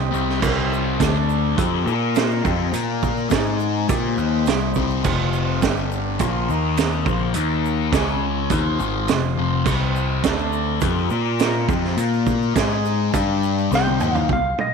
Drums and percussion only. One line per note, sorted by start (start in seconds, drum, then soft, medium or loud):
0.14 shaker medium
0.29 snare soft
0.42 kick loud
0.42 crash medium
0.42 shaker loud
0.73 shaker medium
1.00 kick medium
1.00 snare medium
1.00 closed hi-hat medium
1.00 shaker medium
1.16 shaker soft
1.30 shaker medium
1.58 kick medium
1.58 closed hi-hat medium
1.58 shaker loud
1.88 shaker medium
2.15 snare loud
2.15 closed hi-hat medium
2.15 shaker loud
2.31 shaker soft
2.45 kick loud
2.45 shaker medium
2.74 closed hi-hat medium
2.74 shaker loud
3.03 kick medium
3.03 shaker medium
3.17 shaker soft
3.30 kick medium
3.30 snare loud
3.30 closed hi-hat medium
3.30 shaker loud
3.46 shaker soft
3.60 shaker medium
3.89 kick loud
3.89 closed hi-hat medium
3.89 shaker loud
4.18 shaker medium
4.46 snare loud
4.46 closed hi-hat medium
4.46 shaker medium
4.60 shaker soft
4.74 kick medium
4.74 shaker medium
4.90 shaker soft
5.04 kick loud
5.04 crash medium
5.04 shaker medium
5.33 shaker medium
5.62 kick medium
5.62 snare loud
5.62 closed hi-hat medium
5.62 shaker loud
5.77 shaker soft
5.92 shaker medium
6.19 kick medium
6.19 closed hi-hat medium
6.19 shaker medium
6.50 shaker medium
6.77 snare loud
6.77 closed hi-hat medium
6.77 shaker loud
6.92 shaker soft
7.06 kick loud
7.06 shaker medium
7.34 closed hi-hat medium
7.34 shaker loud
7.66 shaker medium
7.93 kick medium
7.93 snare loud
7.93 closed hi-hat medium
7.93 shaker medium
8.08 shaker soft
8.50 kick medium
8.50 closed hi-hat medium
8.50 shaker medium
8.80 shaker medium
9.08 snare loud
9.08 closed hi-hat medium
9.08 shaker medium
9.23 shaker soft
9.66 kick loud
9.66 crash medium
9.66 shaker loud
9.96 shaker medium
10.24 kick medium
10.24 snare loud
10.24 closed hi-hat medium
10.24 shaker loud
10.39 shaker soft
10.53 shaker medium
10.81 kick medium
10.81 closed hi-hat medium
10.81 shaker loud
11.10 shaker medium
11.39 snare loud
11.39 closed hi-hat medium
11.39 shaker loud
11.69 kick loud
11.69 shaker medium
11.84 snare soft
11.97 closed hi-hat medium
11.97 shaker loud
12.13 shaker soft
12.27 kick medium
12.27 shaker medium
12.42 shaker soft
12.56 kick medium
12.56 snare loud
12.56 closed hi-hat medium
12.56 shaker loud
12.72 shaker soft
12.85 shaker medium
13.14 kick loud
13.14 closed hi-hat medium
13.14 shaker medium
13.43 shaker medium
13.58 shaker soft
13.72 snare medium
13.72 shaker medium
13.87 high tom medium
13.87 shaker soft
14.00 mid tom medium
14.00 shaker medium
14.15 floor tom medium
14.15 shaker soft
14.29 kick medium
14.29 floor tom medium
14.58 mid tom medium